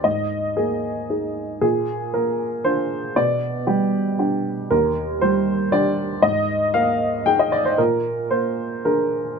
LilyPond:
\new Staff \with { instrumentName = "Upright piano" } { \time 3/4 \key bes \mixolydian \tempo 4 = 116 << { ees''4 aes'4. r8 | aes'4 bes'4 c''4 | d''4 g'4. r8 | bes'4 c''4 d''4 |
ees''4 f''4 g''16 ees''16 d''16 c''16 | bes'4 c''4 bes'4 | } \\ { aes,4 bes4 <ees' aes'>4 | bes,4 bes4 <d' f'>4 | b,4 g4 <d' g'>4 | ees,4 g4 <d' g'>4 |
aes,4 bes4 <ees' aes'>4 | bes,4 bes4 <d' aes'>4 | } >> }